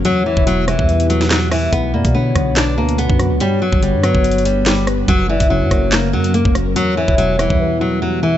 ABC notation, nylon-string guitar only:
X:1
M:4/4
L:1/8
Q:1/4=143
K:Edor
V:1 name="Nylon-string guitar" clef=bass
F, E, F, E,2 F, F, E, | B, ^A, B,2 D A, B, z | G, F, G, F,2 G, G, z | F, E, F,2 ^A, F, A, z |
F, E, F, E,2 F, F, E, |]